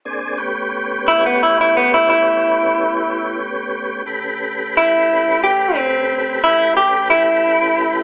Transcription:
X:1
M:12/8
L:1/16
Q:3/8=60
K:Amix
V:1 name="Clean electric guitar"
z6 E B, E E B, E E8 z4 | z4 E4 G2 =C4 E2 G2 E6 |]
V:2 name="Tonewheel organ"
[_B,,=CD^G]2 [A,,=B,^C=G]16- [A,,B,CG]6 | [C,A,GB]24 |]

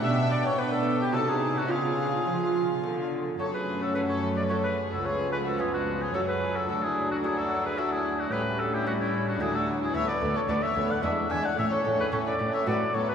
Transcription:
X:1
M:3/4
L:1/16
Q:1/4=110
K:F#m
V:1 name="Oboe"
e2 d c B A2 =G A ^G2 _G | G8 z4 | c B2 A B c2 d c B2 A | c2 B A G F2 G A B2 A |
A G2 F G A2 B A G2 F | B2 A =G F E2 F ^G A2 G | [K:A] e d2 c d e2 f e2 g f | e c2 B c d2 e d2 c B |]
V:2 name="Violin section"
=g8 a4 | ^e8- e2 z2 | A G2 F G A2 B A G2 F | G2 G F ^E D2 E F G2 F |
F E2 D E F2 G F E2 D | =G2 F E D C2 D E F2 E | [K:A] c B2 A B c2 d B2 e d | c A2 G A B2 c B2 A G |]
V:3 name="Violin section"
e2 d c B A2 =G A ^G2 _G | G8 z4 | C12 | B,8 C4 |
D12 | C8 D4 | [K:A] B,2 B,2 B,2 B,2 D2 D2 | C2 C2 C2 C2 B,2 B,2 |]
V:4 name="Lute"
[B,D=G]8 [_E_G]4 | [G,C^E]12 | z4 [A,CF]4 [A,CF]4 | z4 [B,C^E]4 [A,CF]4 |
z4 [A,DF]4 [A,DF]4 | z4 [A,C=G]4 [A,DF]4 | [K:A] z4 [B,DA]4 [B,DG]4 | z4 [A,CA]4 [B,F]4 |]
V:5 name="Lute" clef=bass
B,,4 B,4 =C,4 | C,4 ^E,4 D,4 | F,,12 | z8 F,,4 |
D,,12 | A,,8 D,,4 | [K:A] D,,2 D,,2 D,,2 D,,2 E,,2 E,,2 | A,,2 A,,2 A,,2 A,,2 A,,2 A,,2 |]
V:6 name="Viola section"
D4 D4 _E4 | ^E8- E2 z2 | A,12 | ^E,8 F,4- |
F,12 | =G,8 F,4 | [K:A] A,2 A,2 A,2 A,2 G,2 G,2 | A,2 A,2 A,2 A,2 F,2 F,2 |]
V:7 name="Cello section" clef=bass
B,,4 B,4 =C,4 | C,4 ^E,4 D,4 | F,,12 | C,,8 F,,4 |
D,,12 | A,,8 D,,4 | [K:A] D,,2 D,,2 D,,2 D,,2 E,,2 E,,2 | A,,2 A,,2 A,,2 A,,2 A,,2 A,,2 |]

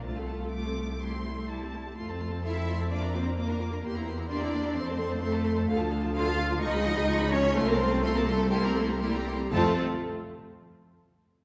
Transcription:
X:1
M:4/4
L:1/16
Q:1/4=126
K:F
V:1 name="Violin section"
a f a f d'4 c'4 a4 | c' a c' a c' a c' a d' b d' b d' b d' b | c' b c' b c' b c' b c' a c' a c' a c' a | f a f a f a f a _d' _c' d' c' d' c' d' c' |
c' a c' a c' a c' a c' b c' b c' b c' b | a2 z12 z2 |]
V:2 name="Violin section"
A12 z4 | z4 e4 d2 c2 B4 | z4 d4 c4 A4 | z4 f4 _e6 _d2 |
A B c2 A B A2 G B A2 G4 | A2 z12 z2 |]
V:3 name="Viola section"
[A,F] [CA] [A,F] [CA] [A,F] [CA] [A,F] [CA] [G,E] [CG] [G,E] [CG] [G,E] [CG] [G,E] [CG] | [A,F] [CA] [A,F] [CA] [A,F] [CA] [A,F] [CA] [B,F] [DB] [B,F] [DB] [B,F] [DB] [B,F] [DB] | [B,G] [CE] [B,G] [CE] [B,G] [CE] [B,G] [CE] [CA] [A,c] [CA] [A,c] [CA] [A,c] [CA] [A,c] | [D,A] [F,F] [D,A] [F,F] [D,A] [F,F] [D,A] [F,F] [F,F] [_A,_A] [F,F] [A,A] [F,F] [A,A] [F,F] [A,A] |
[A,F] [CA] [A,F] [CA] [A,F] [CA] [A,F] [CA] [B,E] [CG] [B,E] [CG] [B,E] [CG] [B,E] [CG] | [CF]2 z12 z2 |]
V:4 name="Cello section"
A,12 z4 | z4 E4 D2 C2 B,4 | z4 D4 C4 A,4 | z4 F4 _E6 _D2 |
A, B, C2 A, B, A,2 G, B, A,2 G,4 | A,2 z12 z2 |]
V:5 name="Double bass section" clef=bass
C,,12- C,,2 z2 | F,,16 | E,,8 F,,8 | D,,8 _D,,8 |
C,,12- C,,2 z2 | F,,2 z12 z2 |]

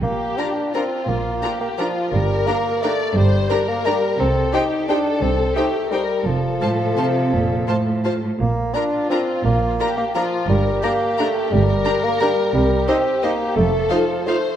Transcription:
X:1
M:3/4
L:1/8
Q:1/4=172
K:Bb
V:1 name="Violin section"
z2 [Bb]2 [Bb]2 | z2 [Bb]2 [Bb]2 | z2 [Bb]2 [Bb]2 | z2 [Bb]2 [Bb]2 |
z2 [cg]2 [cg]2 | z2 [cg]2 [cg]2 | z2 [ca]2 [ca]2 | z2 [ca]2 [ca]2 |
z2 [Bb]2 [Bb]2 | z2 [Bb]2 [Bb]2 | z2 [Bb]2 [Bb]2 | z2 [Bb]2 [Bb]2 |
z2 [ce]2 [ce]2 | z2 [cf]2 [cf]2 |]
V:2 name="Violin section"
G4 F2- | F2 G2 F2 | B4 d2 | c2 B4 |
A2 G2 A2- | A2 G2 B2 | A6- | A4- A z |
z2 F4- | F2 G2 F2 | B2 G4 | B6- |
B2 G4 | A4 c2 |]
V:3 name="Viola section"
z2 [DF]2 [DF]2 | z2 [DF]2 [DF]2 | z2 [DG]2 [DG]2 | z2 [DG]2 [DG]2 |
z2 [EG]2 [EG]2 | z2 [EG]2 [EG]2 | z2 F2 F2 | z2 F2 F2 |
z2 [DF]2 [DF]2 | z2 [DF]2 [DF]2 | z2 [DG]2 [DG]2 | z2 [DG]2 [DG]2 |
z2 [EG]2 [EG]2 | z2 [EF]2 [EF]2 |]
V:4 name="Bassoon"
B,2 D2 C2 | B,3 B, F,2 | G,2 B,2 A,2 | G,3 B, G,2 |
C2 E2 D2 | C2 A,2 G,2 | F,6- | F,4- F, z |
B,2 D2 C2 | B,3 B, F,2 | G,2 B,2 A,2 | G,3 B, G,2 |
G,2 C2 B,2 | A,2 F,2 A,2 |]
V:5 name="Cello section" clef=bass
B,,2 z4 | B,,2 z4 | G,,2 z4 | G,,2 z4 |
C,2 z4 | C,2 z4 | F,,2 A,,2 C,2 | B,,2 A,,3 A,, |
B,,2 z4 | B,,2 z4 | G,,2 z4 | G,,2 z4 |
C,2 z4 | F,,2 z4 |]
V:6 name="Double bass section" clef=bass
B,,,2 z4 | B,,,2 z4 | G,,,2 z4 | G,,,2 z4 |
C,,2 z4 | C,,2 z4 | F,,,2 z4 | F,,,2 z4 |
B,,,2 z4 | B,,,2 z4 | G,,,2 z4 | G,,,2 z4 |
C,,2 z4 | F,,,2 z4 |]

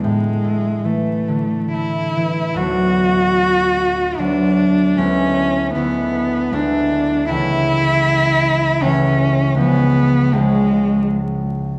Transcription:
X:1
M:3/4
L:1/8
Q:1/4=78
K:A
V:1 name="Cello"
G,2 A,2 E2 | F4 D2 | C2 B,2 D2 | E4 C2 |
B,2 G,2 z2 |]
V:2 name="Harp" clef=bass
A,, A, E, D, A, E, | [D,,F,B,D]4 [D,,F,B,D]2 | [D,,G,B,E]2 [D,,G,B,E]2 [D,,G,B,E]2 | [C,,E,A,C]4 [C,,E,A,C]2 |
[C,,^E,G,C]2 [C,,E,G,C]4 |]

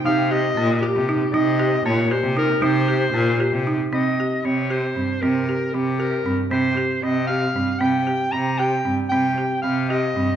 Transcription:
X:1
M:5/8
L:1/16
Q:1/4=116
K:Cphr
V:1 name="Clarinet"
f2 e4 G4 | e4 d2 c2 B2 | c8 z2 | e4 d2 c4 |
B4 G2 B3 z | c4 e2 f4 | g4 b2 g3 z | g4 f2 e4 |]
V:2 name="Marimba"
E2 G2 B,2 G2 E2 | E2 G2 B,2 G2 E2 | E2 G2 B,2 G2 E2 | C2 G2 C2 G2 C2 |
C2 G2 C2 G2 C2 | C2 G2 C2 G2 C2 | C2 G2 C2 G2 C2 | C2 G2 C2 G2 C2 |]
V:3 name="Cello" clef=bass
C,4 B,,2 z C,2 z | C,4 B,,2 z C,2 z | C,4 B,,2 z C,2 z | C,2 z2 C,4 G,, z |
C,2 z2 C,4 G,, z | C,2 z2 C,4 G,, z | C,2 z2 C,4 G,, z | C,2 z2 C,4 G,, z |]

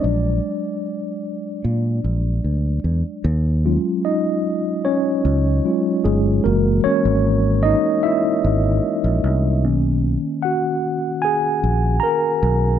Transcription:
X:1
M:4/4
L:1/16
Q:1/4=75
K:Bbm
V:1 name="Tine electric piano"
=d12- d2 z2 | [K:Ebm] z4 [Ee]4 [Dd]6 [A,A]2 | B2 [Dd]4 [Ee]2 [_F_f]6 z2 | z4 [^F^f]4 [Aa]4 [^A^a]4 |]
V:2 name="Tine electric piano"
[^F,A,=D]16 | [K:Ebm] z2 [G,A,DF]6 z4 [G,A,DF]2 z2 | [_F,A,B,G]16 | [^D,^A,^C]6 z8 z2 |]
V:3 name="Fingered electric bass" clef=bass
B,,,2 z6 B,,2 B,,,2 =D,,2 _F,, z | [K:Ebm] E,,3 z6 z D,,2 z2 =G,,,2 | G,,,2 z A,,,4 z3 A,,,2 z B,,, =C,,2 | =B,,,3 z6 z ^A,,,2 z2 B,,,2 |]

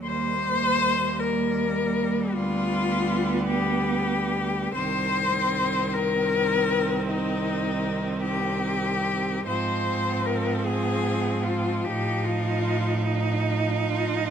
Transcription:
X:1
M:12/8
L:1/8
Q:3/8=51
K:Fdor
V:1 name="Cello"
c3 B3 F3 G3 | c3 B3 E3 G3 | c2 B A2 F G F2 E2 F |]
V:2 name="Cello"
B,6 =B,6 | C12 | C6 E6 |]
V:3 name="Cello" clef=bass
G,12 | E,12 | F,12 |]
V:4 name="Cello" clef=bass
E,,6 D,,6 | C,,12 | A,,6 =A,,6 |]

